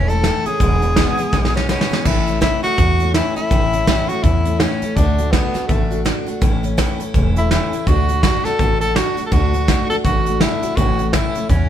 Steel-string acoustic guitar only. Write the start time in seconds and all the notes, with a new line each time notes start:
0.10 A3 C#4 E4
0.25 A2 E3 A3 C#4 E4
0.46 A3 C#4 E4
0.61 E2 B2 E3 G#3 B3 E4
0.82 E3 G#3 B3 E4
0.97 E2 B2 E3 G#3 B3 E4
1.18 E3 G#3 B3 E4
1.32 E3 G#3 B3 E4
1.54 E3 G#3 B3 E4
1.69 E2 B2 E3 G#3 B3 E4
1.91 E3 G#3 B3 E4
2.05 A2 E3 A3 C#4 E4
2.27 A3 C#4 E4
2.41 A2 E3 A3 C#4 E4
2.63 A3 C#4 E4
2.78 E3 A3 C#4 E4
3.00 A3 C#4 E4
3.15 A2 E3 A3 C#4 E4
3.36 A3 C#4 E4
3.51 A2 E3 A3 C#4 E4
3.73 A3 C#4 E4
3.87 A2 E3 A3 C#4 E4
4.10 A3 C#4 E4
4.24 E3 A3 C#4 E4
4.45 A3 C#4 E4
4.60 A2 E3 A3 C#4 E4
4.82 A3 C#4 E4
4.98 D3 A3 D4 F#4
5.19 A3 D4 F#4
5.34 D3 A3 D4 F#4
5.54 A3 D4 F#4
5.69 D3 A3 D4 F#4
5.91 A3 D4 F#4
6.05 D3 A3 D4 F#4
6.27 A3 D4 F#4
6.41 A2 E3 A3 C#4 E4
6.63 A3 C#4 E4
6.77 A2 E3 A3 C#4 E4
7.00 A3 C#4 E4
7.15 E3 A3 C#4 E4
7.36 A3 C#4 E4
7.52 A2 E3 A3 C#4 E4
7.73 A3 C#4 E4
7.88 D3 A3 D4 F#4
8.10 A3 D4 F#4
8.24 D3 A3 D4 F#4
8.46 A3 D4 F#4
8.61 D3 A3 D4 F#4
8.82 A3 D4 F#4
8.96 D3 A3 D4 F#4
9.17 A3 D4 F#4
9.31 D3 A3 D4 F#4
9.53 A3 D4 F#4
9.68 D3 A3 D4 F#4
9.90 A3 D4 F#4
10.05 D3 A3 D4 F#4
10.27 A3 D4 F#4
10.42 D3 A3 D4 F#4
10.63 A3 D4 F#4
10.78 A2 E3 A3 C#4 E4
11.00 A3 C#4 E4
11.14 A2 E3 A3 C#4 E4
11.36 A3 C#4 E4
11.50 E3 A3 C#4 E4